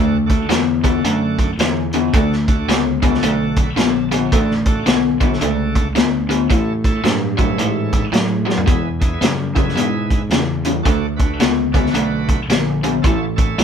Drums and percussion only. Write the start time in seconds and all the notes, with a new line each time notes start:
0.29 kick, closed hi-hat
0.50 snare, closed hi-hat
0.84 kick, closed hi-hat
1.05 closed hi-hat
1.39 kick, closed hi-hat
1.59 snare, closed hi-hat
1.93 closed hi-hat
2.13 kick, closed hi-hat
2.33 snare
2.48 kick, closed hi-hat
2.69 snare, closed hi-hat
3.03 kick, closed hi-hat
3.14 snare
3.23 closed hi-hat
3.56 kick, closed hi-hat
3.77 snare, closed hi-hat
4.12 closed hi-hat
4.32 kick, closed hi-hat
4.51 snare
4.66 kick, closed hi-hat
4.86 snare, closed hi-hat
5.21 kick, closed hi-hat
5.33 snare
5.41 closed hi-hat
5.75 kick, closed hi-hat
5.96 snare, closed hi-hat
6.30 closed hi-hat
6.50 kick, closed hi-hat
6.84 kick, closed hi-hat
7.05 snare, closed hi-hat
7.38 kick, closed hi-hat
7.59 closed hi-hat
7.93 kick, closed hi-hat
8.13 snare, closed hi-hat
8.49 snare
8.57 floor tom
8.67 kick, closed hi-hat
9.01 kick, closed hi-hat
9.22 snare, closed hi-hat
9.56 kick, closed hi-hat
9.69 snare
9.77 closed hi-hat
10.10 kick, closed hi-hat
10.30 snare, closed hi-hat
10.65 closed hi-hat
10.85 kick, closed hi-hat
11.19 kick, closed hi-hat
11.40 snare, closed hi-hat
11.74 kick, closed hi-hat
11.86 snare
11.94 closed hi-hat
12.29 kick, closed hi-hat
12.50 snare, closed hi-hat
12.84 closed hi-hat
13.04 kick, closed hi-hat
13.38 kick, closed hi-hat
13.59 snare, closed hi-hat